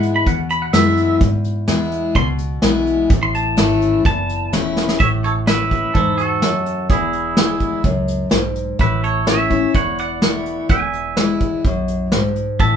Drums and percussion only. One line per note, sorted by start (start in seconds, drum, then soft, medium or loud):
0.03 closed hi-hat medium
0.26 kick loud
0.26 closed hi-hat medium
0.50 closed hi-hat medium
0.73 snare loud
0.73 closed hi-hat medium
0.97 closed hi-hat medium
1.21 kick loud
1.21 closed hi-hat loud
1.44 closed hi-hat medium
1.68 snare loud
1.68 closed hi-hat medium
1.92 closed hi-hat medium
2.15 kick medium
2.15 closed hi-hat medium
2.38 closed hi-hat medium
2.62 snare loud
2.62 closed hi-hat medium
2.86 closed hi-hat medium
3.10 kick loud
3.10 closed hi-hat loud
3.34 closed hi-hat medium
3.57 snare loud
3.57 closed hi-hat medium
3.82 closed hi-hat medium
4.05 kick loud
4.05 closed hi-hat medium
4.29 closed hi-hat medium
4.53 snare loud
4.53 closed hi-hat medium
4.77 snare medium
4.89 snare medium
5.00 kick loud
5.00 closed hi-hat medium
5.24 closed hi-hat medium
5.47 snare loud
5.47 closed hi-hat medium
5.71 kick medium
5.71 closed hi-hat medium
5.95 kick loud
5.95 closed hi-hat medium
6.18 closed hi-hat medium
6.42 snare loud
6.42 closed hi-hat medium
6.66 closed hi-hat medium
6.90 kick loud
6.90 closed hi-hat medium
7.13 closed hi-hat medium
7.37 snare loud
7.37 closed hi-hat medium
7.60 kick medium
7.60 closed hi-hat medium
7.84 kick loud
7.84 closed hi-hat medium
8.08 closed hi-hat medium
8.31 snare loud
8.31 closed hi-hat medium
8.55 closed hi-hat medium
8.79 kick loud
8.79 closed hi-hat medium
9.03 closed hi-hat medium
9.27 snare loud
9.27 closed hi-hat medium
9.51 kick medium
9.51 closed hi-hat medium
9.75 kick loud
9.75 closed hi-hat medium
9.98 closed hi-hat medium
10.22 snare loud
10.22 closed hi-hat medium
10.46 closed hi-hat medium
10.69 kick loud
10.69 closed hi-hat medium
10.93 closed hi-hat medium
11.17 snare loud
11.17 closed hi-hat medium
11.40 kick medium
11.40 closed hi-hat medium
11.64 kick loud
11.64 closed hi-hat medium
11.88 closed hi-hat medium
12.12 snare loud
12.12 closed hi-hat medium
12.36 closed hi-hat medium
12.59 kick loud
12.59 closed hi-hat medium